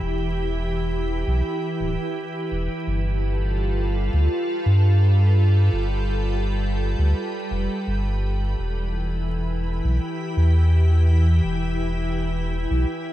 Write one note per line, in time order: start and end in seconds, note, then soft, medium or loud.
0.00 1.24 E1 medium
0.00 2.87 E3 medium
0.00 2.88 E4 medium
0.00 5.17 G4 medium
0.00 13.13 B4 medium
0.00 4.45 B5 medium
1.27 1.42 B1 loud
1.80 1.97 D1 loud
2.51 2.68 E1 medium
2.87 4.09 G1 loud
2.87 8.59 G3 medium
2.96 10.40 A4 medium
3.02 8.58 F4 medium
4.08 10.77 G5 medium
4.13 4.28 D2 loud
4.66 5.70 G2 medium
5.73 6.95 G1 loud
6.99 7.14 D2 loud
7.51 7.68 F1 loud
7.87 8.55 G1 medium
8.59 9.81 E1 medium
8.59 13.13 E3 medium
8.77 13.13 E4 medium
9.17 13.13 B5 medium
9.28 13.13 G4 medium
9.84 9.99 B1 loud
10.37 11.41 E2 medium
11.44 12.66 E1 loud
12.71 12.85 B1 loud